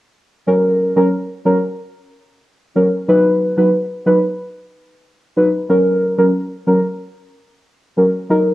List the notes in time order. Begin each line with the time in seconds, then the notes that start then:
0.47 F#3 C#4 A#4
0.96 F#3 C#4 A#4
1.45 F#3 C#4 A#4
2.76 F#3 C#4 A#4
3.08 F#3 D#4 B4
3.57 F#3 D#4 B4
4.06 F#3 D#4 B4
5.37 F#3 D#4 B4
5.69 F#3 C#4 A#4
6.18 F#3 C#4 A#4
6.67 F#3 C#4 A#4
7.97 F#3 C#4 A#4
8.30 F#3 D#4 A#4